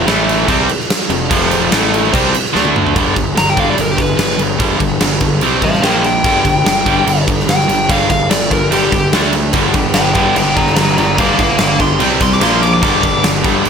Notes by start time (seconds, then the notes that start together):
0.07 A1 A2 E3 A3, snare, crash
0.29 crash
0.48 C2 C3 G3 C4, kick, crash
0.69 crash
0.80 snare
0.90 snare, crash
1.00 snare
1.10 F1 F2 C3, crash
1.30 F1 F2 C3 F3, kick, crash
1.51 crash
1.71 A1 A2 E3 A3, snare, crash
1.94 crash
2.12 C2 C3 G3 C4, kick, crash
2.35 crash
2.45 snare
2.53 D2 D3 A3 D4, snare
2.65 high tom
2.76 mid tom
2.87 floor tom
2.94 G1 G2 D3 G3, kick, crash
3.15 G1 G2 D3, kick, crash
3.35 G1 G2 D3 A#5, snare, crash
3.50 G5
3.57 G2 D3 G3 F5, kick, crash
3.70 D5
3.78 G1 G2 D3 A#4, crash
3.91 G4
3.98 G2 D3 B4, kick, crash
4.18 G1 G2 D3, snare, crash
4.30 snare
4.38 G1 G2 D3, crash
4.59 G1 G2 D3 G3, kick, crash
4.80 G1 G2 D3, kick, crash
5.00 G1 G2 D3, snare, crash
5.20 G2 D3, kick, crash
5.41 C2 C3 G3 C4, crash
5.62 A1 C3 G3 C5 F5, kick, crash
5.73 snare
5.82 A#1 A#2 F3 A#3 A#4 G5, snare, crash
6.04 A#2 F3 G5, crash
6.24 G1 G2 D3 G3, kick, crash
6.44 G1 G2 D3, kick, crash
6.65 G1 G2 D3, snare, crash
6.85 G2 D3 G3, kick, crash
7.06 G1 G2 D3, crash
7.27 G2 D3, kick, crash
7.40 snare
7.47 G1 G2 D3 G5, snare, crash
7.60 snare
7.68 G1 G2 D3, crash
7.89 G1 G2 D3 G3 F5, kick, crash
8.10 G1 G2 D3 F5, kick, crash
8.30 G1 G2 D3 D5, snare, crash
8.51 G2 D3 A#4, kick, crash
8.71 G1 G2 D3 G3 G4, crash
8.92 G1 G2 D3, kick, crash
9.12 D2 D3 A3 D4, snare, crash
9.23 snare
9.33 D3 A3, crash
9.53 G1 G2 D3 G3 B3 D4 G4, kick, crash
9.74 G1 G2 D3, kick, crash
9.94 G1 G2 D3 B4 G5, snare, crash
10.15 G2 D3 G3 B4 G5, kick, crash
10.35 G1 G2 D3 G3 B3 D4 G4 B4 G5, crash
10.56 G2 D3 D5 A#5, kick, crash
10.67 snare
10.75 G1 G2 D3 D5 A#5, snare, crash
10.87 snare
10.98 G1 G2 D3 D5 A#5, crash
11.18 G1 G2 D3 G3 B3 D4 G4 F5 D6, kick, crash
11.39 G1 G2 D3 F5 D6, kick, crash
11.59 G1 G2 D3 F5 D6, snare, crash
11.80 G2 D3 C6, kick, crash
11.99 C2 C3 G3 C4 G4, crash
12.20 C2 C3 G3 C6, kick, crash
12.32 D6, snare
12.41 A#1 A#2 F3 A#3 F4 C6, snare, crash
12.53 C6
12.62 A#2 F3 D6, crash
12.73 D6
12.83 G1 G2 D3 G3 B3 D4 G4 D6, kick, crash
13.03 G1 G2 D3, kick, crash
13.23 G1 G2 D3, snare, crash
13.44 G2 D3 G3, kick, crash
13.64 G1 G2 D3 G3 B3 D4, crash